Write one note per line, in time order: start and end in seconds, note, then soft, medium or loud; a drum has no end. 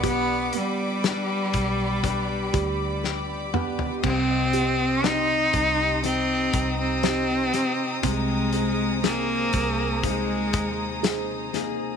0.00 0.49 B1 medium
0.00 0.52 B3 medium
0.00 4.03 B3 medium
0.00 1.03 D4 medium
0.00 7.99 G4 medium
0.00 1.99 G4 medium
0.00 4.00 D5 medium
0.00 3.99 B5 medium
0.00 4.00 D6 medium
0.00 kick medium
0.00 closed hi-hat medium
0.06 0.51 B3 loud
0.53 2.50 B3 medium
0.53 closed hi-hat medium
0.57 3.51 G3 medium
1.03 2.02 D4 medium
1.03 2.03 G4 medium
1.03 2.03 B4 medium
1.03 snare medium
1.03 closed hi-hat medium
1.53 2.50 B1 medium
1.53 kick medium
1.53 closed hi-hat medium
2.03 3.52 D4 medium
2.03 3.03 G4 medium
2.03 3.53 B4 medium
2.03 kick medium
2.03 closed hi-hat medium
2.53 4.00 D2 medium
2.53 3.99 G4 soft
2.53 kick loud
2.53 closed hi-hat medium
3.03 3.54 G4 medium
3.03 snare medium
3.53 4.02 B3 medium
3.53 4.13 D4 soft
3.53 5.03 G4 medium
3.53 4.14 B4 medium
3.53 mid tom medium
3.79 floor tom medium
4.03 5.50 C2 loud
4.03 8.02 C3 medium
4.03 5.02 C4 medium
4.03 5.07 C4 loud
4.03 8.00 D#5 medium
4.03 6.02 C6 medium
4.03 11.97 D#6 medium
4.03 kick loud
4.03 crash medium
4.53 6.49 G4 medium
4.53 closed hi-hat medium
5.03 6.03 C4 soft
5.03 7.00 C4 medium
5.03 6.04 D#4 medium
5.03 6.04 D#4 loud
5.03 6.03 G4 medium
5.03 snare medium
5.03 closed hi-hat medium
5.53 6.50 C2 medium
5.53 kick medium
5.53 closed hi-hat medium
6.03 7.53 C4 medium
6.03 6.75 C4 medium
6.03 7.03 D#4 medium
6.03 7.53 G4 medium
6.03 11.97 A#5 medium
6.03 closed hi-hat medium
6.53 7.50 C2 medium
6.53 kick loud
6.53 closed hi-hat medium
6.80 8.00 C4 medium
7.03 7.53 D#4 medium
7.03 8.00 G4 medium
7.03 snare loud
7.03 closed hi-hat medium
7.53 9.03 C4 medium
7.53 9.03 D#4 soft
7.53 8.14 G4 medium
7.53 snare soft
7.53 closed hi-hat medium
8.02 9.49 C2 medium
8.02 11.97 C3 medium
8.02 9.01 G#3 medium
8.02 9.02 C4 medium
8.02 11.97 G#4 medium
8.02 11.97 C5 medium
8.02 kick medium
8.02 closed hi-hat medium
8.53 10.50 G#4 soft
8.53 closed hi-hat medium
9.03 10.03 A#3 medium
9.03 10.00 A#3 medium
9.03 10.99 C4 medium
9.03 10.02 D#4 medium
9.03 10.03 G#4 medium
9.03 snare medium
9.03 closed hi-hat medium
9.53 10.54 C2 medium
9.53 kick medium
9.53 closed hi-hat medium
10.03 11.01 G#3 medium
10.03 11.53 A#3 medium
10.03 11.02 D#4 medium
10.03 11.53 G#4 medium
10.03 kick medium
10.03 closed hi-hat medium
10.53 11.97 D#2 medium
10.53 kick loud
10.53 closed hi-hat medium
11.03 11.53 D#4 medium
11.03 11.97 G#4 medium
11.03 snare loud
11.03 closed hi-hat medium
11.53 11.97 A#3 medium
11.53 11.97 D#4 medium
11.53 11.97 G#4 medium
11.53 snare soft
11.53 closed hi-hat medium